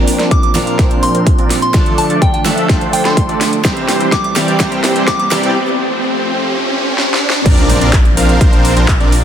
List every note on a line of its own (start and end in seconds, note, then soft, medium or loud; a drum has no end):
0.00 0.52 A#2 medium
0.00 0.17 F3 medium
0.00 3.61 F3 medium
0.00 0.17 C4 medium
0.00 0.52 C4 medium
0.00 1.72 C4 medium
0.00 0.17 D4 medium
0.00 0.52 D4 medium
0.00 3.61 D4 medium
0.00 0.53 F4 medium
0.00 0.17 A#4 medium
0.00 0.53 A#4 medium
0.00 1.72 A#4 medium
0.00 0.17 D5 loud
0.00 3.61 D5 medium
0.00 riser medium
0.08 open hi-hat loud
0.19 0.32 F3 medium
0.19 0.32 C4 medium
0.19 0.32 D4 medium
0.19 0.32 A#4 medium
0.19 0.32 D5 medium
0.19 snare soft
0.19 closed hi-hat soft
0.31 0.39 D6 medium
0.31 kick loud
0.31 closed hi-hat medium
0.43 0.51 D6 medium
0.43 closed hi-hat soft
0.54 1.71 A#2 medium
0.54 0.76 F3 medium
0.54 1.71 C4 medium
0.54 0.76 C4 medium
0.54 1.71 D4 medium
0.54 0.76 D4 medium
0.54 1.72 F4 medium
0.54 0.76 A#4 medium
0.54 1.72 A#4 loud
0.54 0.76 F5 loud
0.54 snare medium
0.54 open hi-hat loud
0.67 closed hi-hat soft
0.79 1.12 F3 medium
0.79 1.12 C4 medium
0.79 1.12 D4 medium
0.79 1.12 A#4 medium
0.79 1.12 C5 loud
0.79 kick loud
0.79 snare soft
0.79 closed hi-hat medium
0.91 closed hi-hat soft
1.03 1.14 C6 medium
1.03 open hi-hat loud
1.15 1.28 F3 medium
1.15 1.28 C4 medium
1.15 1.28 D4 medium
1.15 1.28 A#4 medium
1.15 1.28 C5 medium
1.15 closed hi-hat soft
1.27 kick loud
1.27 closed hi-hat medium
1.38 1.51 F3 medium
1.38 1.51 C4 medium
1.38 1.51 D4 medium
1.38 1.51 A#4 medium
1.38 1.51 D5 medium
1.38 closed hi-hat soft
1.50 snare medium
1.50 open hi-hat loud
1.62 1.74 C6 medium
1.62 closed hi-hat soft
1.73 2.42 D3 medium
1.73 2.07 F3 medium
1.73 2.42 A3 medium
1.73 3.63 A3 medium
1.73 2.07 A3 medium
1.73 2.43 D4 medium
1.73 2.07 D4 medium
1.73 2.43 F4 medium
1.73 3.63 A4 medium
1.73 2.07 A4 medium
1.73 2.43 A4 medium
1.73 2.07 D5 loud
1.73 kick loud
1.73 snare medium
1.73 closed hi-hat medium
1.86 closed hi-hat soft
1.98 2.10 A5 medium
1.98 open hi-hat loud
2.10 2.23 F3 medium
2.10 2.23 A3 medium
2.10 2.23 D4 medium
2.10 2.23 A4 medium
2.10 2.23 D5 medium
2.10 closed hi-hat soft
2.22 2.29 G5 medium
2.22 kick loud
2.22 closed hi-hat medium
2.34 2.41 G5 medium
2.34 closed hi-hat soft
2.44 3.61 D3 medium
2.44 2.67 F3 medium
2.44 3.62 A3 medium
2.44 2.67 A3 medium
2.44 3.62 D4 medium
2.44 2.67 D4 medium
2.44 3.62 F4 medium
2.44 2.67 A4 medium
2.44 3.62 A4 loud
2.44 2.67 E5 loud
2.44 snare medium
2.44 open hi-hat loud
2.58 closed hi-hat soft
2.69 3.02 F3 medium
2.69 3.02 A3 medium
2.69 3.02 D4 medium
2.69 3.02 A4 medium
2.69 3.02 C5 loud
2.69 kick loud
2.69 snare medium
2.69 closed hi-hat medium
2.81 closed hi-hat soft
2.93 3.03 G5 medium
2.93 open hi-hat loud
3.05 3.18 F3 medium
3.05 3.18 A3 medium
3.05 3.18 D4 medium
3.05 3.18 A4 medium
3.05 3.18 C5 medium
3.05 3.53 C6 medium
3.05 snare medium
3.05 closed hi-hat soft
3.17 kick loud
3.17 closed hi-hat medium
3.29 3.42 F3 medium
3.29 3.42 A3 medium
3.29 3.42 D4 medium
3.29 3.42 A4 medium
3.29 3.42 D5 medium
3.29 closed hi-hat soft
3.41 snare medium
3.41 open hi-hat loud
3.53 closed hi-hat soft
3.63 4.33 C3 medium
3.63 5.53 E3 medium
3.63 3.98 E3 medium
3.63 4.33 G3 medium
3.63 3.98 G3 medium
3.63 5.53 G3 medium
3.63 4.33 C4 medium
3.63 7.42 C4 medium
3.63 3.98 C4 medium
3.63 4.34 E4 medium
3.63 5.53 G4 medium
3.63 3.98 G4 medium
3.63 4.34 G4 medium
3.63 7.42 C5 medium
3.63 3.98 C5 loud
3.63 kick loud
3.63 snare medium
3.63 closed hi-hat medium
3.77 closed hi-hat soft
3.89 snare medium
3.89 open hi-hat loud
4.00 4.13 E3 medium
4.00 4.13 G3 medium
4.00 4.13 C4 medium
4.00 4.13 G4 medium
4.00 4.13 C5 medium
4.00 closed hi-hat soft
4.12 4.20 D6 medium
4.12 kick loud
4.12 snare medium
4.12 closed hi-hat medium
4.24 4.32 D6 medium
4.24 closed hi-hat soft
4.35 4.57 C3 medium
4.35 4.57 E3 medium
4.35 4.58 G3 medium
4.35 4.57 G3 medium
4.35 4.58 C4 medium
4.35 4.57 C4 medium
4.35 4.58 E4 medium
4.35 4.57 G4 medium
4.35 4.59 G4 loud
4.35 4.57 D5 medium
4.35 snare medium
4.35 open hi-hat loud
4.48 closed hi-hat soft
4.59 5.28 C3 medium
4.59 4.93 E3 medium
4.59 5.28 G3 medium
4.59 4.93 G3 medium
4.59 4.93 C4 medium
4.59 5.29 C4 medium
4.59 5.29 E4 medium
4.59 4.93 G4 medium
4.59 5.29 G4 medium
4.59 4.93 C5 loud
4.59 kick loud
4.59 snare medium
4.59 closed hi-hat medium
4.72 closed hi-hat soft
4.84 snare medium
4.84 open hi-hat loud
4.96 5.08 E3 medium
4.96 5.08 G3 medium
4.96 5.08 C4 medium
4.96 5.08 G4 medium
4.96 5.08 C5 medium
4.96 closed hi-hat soft
5.07 5.15 D6 medium
5.07 kick loud
5.07 snare medium
5.07 closed hi-hat medium
5.19 5.27 D6 medium
5.19 closed hi-hat soft
5.30 5.53 C3 medium
5.30 5.52 E3 loud
5.30 5.53 G3 medium
5.30 5.52 G3 medium
5.30 5.52 C4 medium
5.30 5.53 C4 medium
5.30 5.54 E4 medium
5.30 5.52 G4 medium
5.30 5.54 G4 loud
5.30 5.52 D5 loud
5.30 snare medium
5.30 open hi-hat loud
5.43 closed hi-hat soft
5.55 7.44 F3 medium
5.55 7.44 A3 medium
5.55 7.44 G4 medium
6.98 snare medium
7.14 snare medium
7.30 snare loud
7.46 7.79 A#1 loud
7.46 7.79 F3 loud
7.46 7.79 C4 medium
7.46 7.79 D4 medium
7.46 7.79 A#4 medium
7.46 9.24 A#4 medium
7.46 9.24 D5 medium
7.46 7.79 D5 loud
7.46 9.24 F5 medium
7.46 9.24 C6 medium
7.46 kick loud
7.46 closed hi-hat medium
7.46 crash loud
7.46 impact medium
7.58 closed hi-hat soft
7.70 open hi-hat loud
7.81 8.15 A#1 loud
7.81 7.94 F3 medium
7.81 7.94 C4 medium
7.81 7.94 D4 medium
7.81 7.94 A#4 medium
7.81 7.94 D5 medium
7.81 closed hi-hat soft
7.93 kick loud
7.93 clap loud
7.93 closed hi-hat loud
8.05 closed hi-hat soft
8.17 8.38 A#1 loud
8.17 8.38 F3 medium
8.17 8.38 C4 medium
8.17 8.38 D4 medium
8.17 8.38 A#4 medium
8.17 8.38 F5 loud
8.17 open hi-hat loud
8.29 closed hi-hat soft
8.41 8.74 A#1 loud
8.41 8.74 F3 loud
8.41 8.74 C4 medium
8.41 8.74 D4 medium
8.41 8.74 A#4 medium
8.41 8.74 C5 loud
8.41 kick loud
8.41 closed hi-hat medium
8.53 closed hi-hat soft
8.65 open hi-hat loud
8.77 8.98 A#1 loud
8.77 8.89 F3 medium
8.77 8.89 C4 medium
8.77 8.89 D4 medium
8.77 8.89 A#4 medium
8.77 8.89 C5 medium
8.77 closed hi-hat soft
8.88 kick loud
8.88 clap loud
8.88 closed hi-hat loud
9.00 9.24 A#1 medium
9.00 9.13 F3 medium
9.00 9.13 C4 medium
9.00 9.13 D4 medium
9.00 9.13 A#4 medium
9.00 9.13 D5 medium
9.00 closed hi-hat soft
9.12 open hi-hat loud